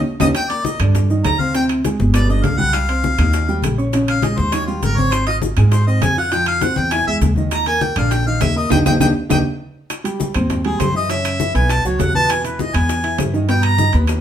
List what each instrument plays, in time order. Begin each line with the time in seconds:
0.20 upright bass D#2, upright piano C#4 D#4 G4, harmonica D#5, high bongo, high conga, high timbale, claves, maracas
0.35 harmonica G5, high bongo, high conga, high timbale, claves, maracas
0.50 upright piano A#3 A#4 A#5, harmonica D5, high bongo, high conga, high timbale, maracas
0.65 harmonica D#5, high bongo, high conga, maracas
0.80 upright bass G2, upright piano D3 D4 D5, high bongo, low conga, high timbale, claves, maracas
0.95 high bongo, high conga, low conga, high timbale, maracas
1.10 upright piano D#3 D#4 D#5, high bongo, high conga, maracas
1.24 upright bass D2, harmonica A#5, high bongo, low bongo, high conga, high timbale, low timbale, claves, maracas
1.39 upright piano C4 C5 C6, harmonica F5, high conga, maracas
1.54 upright piano C3 C4 C5, harmonica G5, high bongo, high conga, high timbale, maracas
1.69 high bongo, high conga, high timbale, claves, maracas
1.85 upright piano G#3 G#4 G#5, high bongo, high conga, high timbale, maracas
2.00 upright bass G1, high bongo, high conga, maracas
2.14 upright piano B2 B3 B4, harmonica D5, high bongo, high conga, high timbale, claves, maracas
2.29 upright piano D3 D4 D5, harmonica D#5, high bongo, high conga, maracas
2.43 upright bass C2, harmonica F5, high bongo, low bongo, high conga, high timbale, low timbale, maracas
2.58 upright piano G3 G4 G5, harmonica F#5, high conga, maracas
2.73 harmonica F5, high bongo, high timbale, claves, maracas
2.88 upright piano C4 C5 C6, high bongo, high conga, high timbale, maracas
3.03 high bongo, high conga, maracas
3.18 upright bass D#2, upright piano D#3 D#4 D#5, high bongo, low conga, high timbale, claves, maracas
3.33 high bongo, high timbale, maracas
3.48 upright piano G3 G4 G5, high bongo, high conga, maracas
3.62 upright bass A#1, high bongo, low bongo, high conga, high timbale, claves, maracas
3.78 upright piano C#4 C#5 C#6, maracas
3.92 upright piano C#3 C#4 C#5, high bongo, high conga, high timbale, maracas
4.08 harmonica F5, high bongo, high conga, high timbale, claves, maracas
4.22 upright piano G#3 G#4 G#5, harmonica D#5, high bongo, high conga, high timbale, maracas
4.37 upright bass D#2, harmonica C5, high bongo, high conga, maracas
4.52 upright piano D#3 D#4 D#5, harmonica C#5, high bongo, high conga, high timbale, claves, maracas
4.67 upright piano G3 G4 G5, harmonica F4, high bongo, high conga, maracas
4.83 upright bass G#1, harmonica A#4, high bongo, low bongo, high conga, high timbale, maracas
4.97 upright piano C4 C5 C6, harmonica C#5, high conga, maracas
5.12 harmonica C5, high bongo, high timbale, claves, maracas
5.27 upright piano F4 F5 F6, harmonica D#5, high bongo, high conga, high timbale, maracas
5.42 high bongo, high conga, maracas
5.57 upright bass G#2, upright piano G#3 G#4 G#5, high bongo, low conga, high timbale, claves, maracas
5.72 harmonica C5, high bongo, high conga, high timbale, maracas
5.87 upright piano C4 C5 C6, harmonica D#5, high bongo, high conga, maracas
6.02 upright bass F2, harmonica G#5, high bongo, low bongo, high conga, high timbale, low timbale, claves, maracas
6.18 upright piano F4 F5 F6, harmonica F#5, maracas
6.32 upright piano F3 F4 F5, harmonica G5, high bongo, high conga, high timbale, maracas
6.46 harmonica F5, high bongo, high conga, high timbale, claves, maracas
6.61 upright piano C4 C5 C6, harmonica F#5, high bongo, high conga, high timbale, maracas
6.76 upright bass E2, harmonica G5, high conga, maracas
6.91 upright piano E3 E4 E5, harmonica G#5, high bongo, high conga, high timbale, claves, maracas
7.07 upright bass E2, upright piano G#3 G#4 G#5, harmonica E5, high bongo, high conga, maracas
7.21 upright bass D#2, high bongo, low bongo, high conga, high timbale, maracas
7.36 upright piano D#3 D#4 D#5, high conga, maracas
7.51 harmonica A#5, high bongo, high timbale, claves, maracas
7.66 upright piano A#3 A#4 A#5, harmonica G#5, high bongo, high conga, high timbale, maracas
7.81 harmonica G5, high bongo, high conga, maracas
7.96 upright bass A#1, upright piano D3 D4 D5, harmonica F5, high bongo, low conga, high timbale, claves, maracas
8.11 harmonica G5, high bongo, high conga, high timbale, maracas
8.26 upright piano D#3 D#4 D#5, harmonica F5, high bongo, high conga, maracas
8.41 upright bass D#2, harmonica E5, high bongo, low bongo, high conga, high timbale, low timbale, claves, maracas
8.56 upright piano A#3 A#4 A#5, harmonica D#5, maracas
8.70 upright bass D#2, upright piano D4 D#4 G4, harmonica G5, low bongo, high conga, high timbale, claves, maracas
8.86 upright bass D#2, upright piano D4 D#4 G4, harmonica G5, low bongo, high conga, high timbale, claves, maracas
9.00 upright bass D#2, upright piano D4 D#4 G4, harmonica G5, low bongo, high conga, high timbale, claves, maracas
9.29 upright bass D#2, upright piano D4 D#4 G4, harmonica G5, low bongo, high conga, high timbale, claves, maracas
9.90 high bongo, high conga, high timbale, claves, maracas
10.04 upright piano G3 G4 G5, high bongo, high conga, high timbale, maracas
10.20 high bongo, high conga, low timbale, maracas
10.34 upright bass D#2, upright piano C4 C5 C6, high conga, low conga, high timbale, claves, maracas
10.50 high bongo, high conga, low conga, high timbale, maracas
10.65 upright piano G3 G4 G5, harmonica G#4, high bongo, high conga, high timbale
10.80 upright bass F#2, harmonica C5, high bongo, low bongo, high conga, high timbale, low timbale, claves, maracas
10.94 upright piano E3 E4 E5, harmonica D#5, high bongo, high conga, maracas
11.09 upright piano C#3 C#4 C#5, harmonica E5, high bongo, high conga, high timbale, maracas
11.25 high bongo, high conga, high timbale, claves, maracas
11.40 upright piano E3 E4 E5, high bongo, high conga, low timbale, maracas
11.54 upright bass B1, upright piano B3 B4 B5, harmonica G#5, high conga, high timbale, maracas
11.69 harmonica A5, high bongo, high conga, high timbale, claves, maracas
11.84 upright bass C#2, upright piano F#3 F#4 F#5, harmonica C#5, high bongo, high conga, maracas
11.99 upright bass E2, harmonica F#5, high bongo, low bongo, high conga, high timbale, low timbale, maracas
12.14 upright piano B2 B3 B4, harmonica A5, high bongo, high conga, maracas
12.29 harmonica G#5, high bongo, high conga, high timbale, claves, maracas
12.44 upright piano E3 E4 E5, harmonica B4, high bongo, high conga, high timbale, maracas
12.59 harmonica D#5, high bongo, high conga, low timbale, maracas
12.74 upright bass E2, upright piano B3 B4 B5, harmonica G#5, high conga, low conga, high timbale, claves, maracas
12.89 high bongo, high conga, high timbale, maracas
13.04 upright piano E3 E4 E5, high bongo, high conga, high timbale
13.18 upright bass G2, high bongo, low bongo, high conga, high timbale, low timbale, claves, maracas
13.33 upright piano D#3 D#4 D#5, high bongo, high conga, maracas
13.48 upright piano B2 B3 B4, harmonica G5, high bongo, high conga, high timbale, maracas
13.63 harmonica A#5, high conga, high timbale, claves
13.78 upright piano D#3 D#4 D#5, high bongo, high conga, low timbale, maracas
13.93 upright bass D#2, upright piano B3 B4 B5, high timbale, maracas
14.07 high bongo, high conga, high timbale, claves, maracas